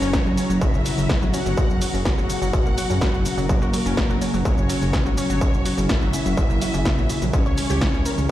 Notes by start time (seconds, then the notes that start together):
Already playing: B2 C#3 F#3 C#4 F#4 C#5 A#5
0.02 F#1 C#4 C#5, shaker
0.13 A#3 A#4, kick, snare, shaker
0.26 F#1 F#3 F#4, shaker
0.37 C#4 C#5, open hi-hat, shaker
0.50 F#1 F#3 F#4, shaker
0.61 F#3 E4 F#4 E5, kick, shaker
0.74 F#1 C#3 C#4, shaker
0.85 F#3 F#4, open hi-hat, shaker
0.98 F#1 C#3 C#4, shaker
1.09 F#4 F#5, kick, snare, shaker
1.22 G1 F#3 F#4, shaker
1.33 C#4 F#4 C#5 F#5, open hi-hat, shaker
1.46 G1 F#3 F#4, shaker
1.57 F#3 F#4, kick, shaker
1.70 F#1, shaker
1.81 F#3 F#4, open hi-hat, shaker
1.94 F#1 C#3 C#4, shaker
2.05 A#3 F#4 A#4 F#5, kick, snare, shaker
2.18 F#1 F#3 F#4, shaker
2.29 C#3 C#4, open hi-hat, shaker
2.42 F#1 F#3 F#4, shaker
2.53 F#3 F#4, kick, shaker
2.66 F#1 A#3 A#4, shaker
2.77 F#3 F#4, open hi-hat, shaker
2.90 F#2 C#3 C#4, shaker
3.01 A#3 A#4, kick, snare, shaker
3.14 F#1 F#3 F#4, shaker
3.25 C#3 C#4, open hi-hat, shaker
3.38 F#1 F#3 F#4, shaker
3.49 F#3 A#3 F#4 A#4, kick, shaker
3.62 F#1 F#4 F#5, shaker
3.73 F#3 F#4, open hi-hat, shaker
3.86 F#1 C#4 C#5, shaker
3.97 A#3 A#4, kick, snare, shaker
4.10 F#1 F#3 F#4, shaker
4.21 C#4 C#5, open hi-hat, shaker
4.34 F#1 F#3 F#4, shaker
4.45 F#3 C#4 F#4 C#5, kick, shaker
4.58 F#1 C#3 C#4, shaker
4.69 F#3 F#4, open hi-hat, shaker
4.82 F#1 C#3 C#4, shaker
4.93 F#4 F#5, kick, snare, shaker
5.06 G1 F#3 F#4, shaker
5.17 C#4 C#5, open hi-hat, shaker
5.30 G1 F#3 F#4, shaker
5.41 F#3 F#4, kick, shaker
5.54 F#1, shaker
5.65 F#3 F#4, open hi-hat, shaker
5.78 F#1 C#3 C#4, shaker
5.89 A#3 E4 A#4 E5, kick, snare, shaker
6.02 F#1 F#3 F#4, shaker
6.13 C#3 C#4, open hi-hat, shaker
6.26 F#1 F#3 F#4, shaker
6.37 F#3 F#4, kick, shaker
6.50 F#1 A#3 A#4, shaker
6.61 F#3 F#4, open hi-hat, shaker
6.74 F#1 C#3 C#4, shaker
6.85 A#3 A#4, kick, snare, shaker
6.98 A#1 F#3 F#4, shaker
7.09 C#3 C#4, open hi-hat, shaker
7.22 A#1 F#3 F#4, shaker
7.33 B2 E3 G3 B3 C#4 E4 C#5, kick, shaker
7.46 C#2 C#5 C#6, shaker
7.58 C#4 C#5, open hi-hat, shaker
7.70 C#2 G4 G5, shaker
7.81 E4 E5, kick, snare, shaker
7.94 C#2 C#4 C#5, shaker
8.06 A#4 A#5, open hi-hat, shaker
8.18 C#2 C#4 C#5, shaker